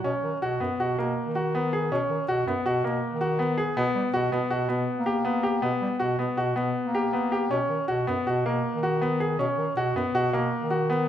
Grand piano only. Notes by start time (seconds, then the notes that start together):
0.04 C#4
0.42 F#4
0.60 B3
0.80 F#4
0.98 A#3
1.35 F#4
1.55 B3
1.73 G#4
1.92 C#4
2.28 F#4
2.47 B3
2.66 F#4
2.84 A#3
3.21 F#4
3.39 B3
3.58 G#4
3.77 B3
4.14 F#4
4.32 B3
4.50 F#4
4.69 B3
5.06 G4
5.25 B3
5.43 G4
5.62 B3
6.00 F#4
6.19 B3
6.37 F#4
6.56 B3
6.94 G4
7.13 B3
7.32 G4
7.51 C#4
7.88 F#4
8.07 B3
8.27 F#4
8.46 A#3
8.83 F#4
9.01 B3
9.20 G#4
9.39 C#4
9.77 F#4
9.96 B3
10.15 F#4
10.33 A#3
10.71 F#4
10.90 B3